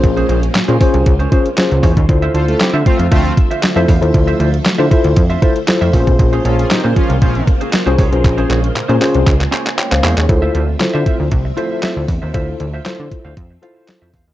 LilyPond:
<<
  \new Staff \with { instrumentName = "Clean electric guitar" } { \time 4/4 \key d \minor \tempo 4 = 117 r16 <des' aes' c''>16 <des' aes' c''>16 r8 <des' aes' c''>16 <des' aes' c''>16 r8 <des' aes' c''>16 <des' aes' c''>16 r8. <des' aes' c''>8 | r16 <f' c'' e''>16 <f' c'' f''>16 r8 <f' c'' e''>16 <f' c'' f''>16 r16 <f' c'' e''>8 r16 <f' c'' e''>16 r16 <f' c'' e''>16 <f' c'' f''>16 r16 | r16 <f' c'' e''>16 <f' c'' e''>16 r8 <f' c'' e''>16 <f' c'' e''>16 r8 <f' c'' e''>16 <f' c'' e''>16 r8 <f' c'' e''>16 <des' aes' c''>16 r16 | r16 <des' aes' c''>16 <des' aes' des''>16 r8 <des' aes' c''>16 <des' aes' des''>16 r16 <des' aes' c''>8 r16 <des' aes' c''>16 r16 <des' aes' c''>16 <des' aes' des''>16 r16 |
r16 <des' aes' c''>16 <des' aes' c''>16 r8 <des' aes' c''>16 <des' aes' c''>16 r8. <des' aes' c''>8 r8 <des' aes' c''>8 | r16 <f' c'' e''>16 <f' c'' e''>16 r8 <f' c'' e''>16 <f' c'' e''>16 r8. <f' c'' e''>16 <f' c'' e''>16 <f' c'' e''>8 r16 <f' c'' e''>16 | <f' c'' e''>8 r16 <f' c'' e''>16 <f' c'' e''>8 r16 <f' c'' f''>16 r8 <f' c'' f''>16 <f' c'' f''>16 r16 <f' c'' e''>16 <f' c'' f''>16 r16 | }
  \new Staff \with { instrumentName = "Tine electric piano" } { \time 4/4 \key d \minor << { r1 | r1 | r1 | r1 |
r2. <des'' g''>16 <c'' f''>8 <aes' des''>16~ | <aes' des''>16 r2. r8. | r1 | } \\ { <des' f' aes' c''>8. r8 <des' f' aes' c''>16 <des' f' aes' c''>8 r8 <des' f' aes' c''>16 r16 <des' f' aes' c''>8 r8 | <e' f' a' c''>4~ <e' f' a' c''>16 r2 <e' f' a' c''>16 r16 <e' f' a' c''>16~ | <e' f' a' c''>8. r8 <e' f' a' c''>16 <e' f' a' c''>8 r8 <e' f' a' c''>16 r16 <e' f' a' c''>8 <des' f' aes' bes' c''>8~ | <des' f' aes' bes' c''>4 r2 r16 <des' f' aes' c''>16 r16 <des' f' aes' c''>16~ |
<des' f' aes' c''>8. r8 <des' f' aes' c''>16 <des' f' aes' c''>8 r2 | <e' f' a' c''>8 r8 <e' f' a' c''>4 r8 <e' f' a' c''>4 r8 | <e' f' a' c''>8 r8 <e' f' a' c''>4 r8 <e' f' a' c''>4 r8 | } >> }
  \new Staff \with { instrumentName = "Analog polysynth" } { \time 4/4 \key d \minor r1 | r8 <f' a' c''>16 <a f' a'>16 <c' e' g'>16 r16 <a c' f'>8 <a c' f'>8 r4. | r1 | r8 <des' f' a'>16 <des' f' aes'>16 <c' ees' g'>16 r16 <f des' f'>8 <f des' f'>8 r4. |
r1 | r1 | r1 | }
  \new Staff \with { instrumentName = "String machine" } { \time 4/4 \key d \minor << { c''1 | c''1~ | c''1~ | c''1~ |
c''1 | c'1~ | c'1 | } \\ { <des aes bes f'>1 | <d f a e''>1~ | <d f a e''>2.~ <d f a e''>8 <des aes bes f'>8~ | <des aes bes f'>1~ |
<des aes bes f'>1 | <d f a e''>1~ | <d f a e''>1 | } >> }
  \new Staff \with { instrumentName = "Analog synth bass" } { \clef bass \time 4/4 \key d \minor bes,,8 bes,,8 bes,16 bes,16 r16 c,16 des,8 r8. des,16 e,16 ees,16 | d,8 d,8 d16 d16 r16 f,16 d,8 r8. f,16 e,16 ees,16 | d,8 d,8 d16 d16 r16 d,16 f,8 r8. f,16 bes,,16 b,,16 | bes,,8 bes,,8 bes,16 bes,16 r16 c,16 bes,,8 r8. c,16 c,16 b,,16 |
bes,,8 bes,,8 bes,16 bes,16 r16 c,16 des,8 r8. des,16 e,16 ees,16 | d,8 d,8 d16 d16 r16 d,16 c,8 r8. d,16 e,16 ees,16 | d,8 d,8 d16 d16 r16 d,16 f,8 r8. f,16 e,16 ees,16 | }
  \new DrumStaff \with { instrumentName = "Drums" } \drummode { \time 4/4 <hh bd>16 hh16 hh16 hh16 <hc hh sn>16 hh16 <hho bd>16 hh16 <hh bd>16 hh16 <hh bd>16 hh16 <hc hh sn>16 hh16 <hho bd>16 <hh bd>16 | <hh bd>16 hh16 hh16 hh16 <hc hh sn>8 <hh bd>16 hh16 <hh bd>16 hh16 <hh bd>16 hh16 <hc hh sn>16 hh16 <hho bd>16 hh16 | <hh bd>16 hh16 hh16 hh16 <hc hh sn>8 <hh bd>16 hh16 <hh bd>16 hh16 <hh bd>16 hh16 <hc hh sn>16 hh16 <hho bd>16 <hh bd>16 | <hh bd>16 hh16 hh16 hh16 <hc hh sn>8 <hh bd>16 hh16 <hh bd>16 hh16 <hh bd>16 hh16 <hc hh sn>16 hh16 <hho bd>16 hh16 |
<hc hh bd>16 hh16 <hc hh>16 hh16 <hc hh>16 hh16 <hc hho>16 hh16 <hc hh bd>16 <hc hh>16 <hc hh>16 <hc hh>16 <hc hh>16 <hc hh>16 <hc hho>16 <hc hh>16 | <hh bd>8 hh8 <hc hh sn>8 <hh bd>8 <hh bd>8 hh8 <hc hh sn>8 <hho bd>8 | <hh bd>8 hh8 <hc hh sn>8 <hh bd>8 <hh bd>8 hh8 <hc hh sn>8 <hho bd>8 | }
>>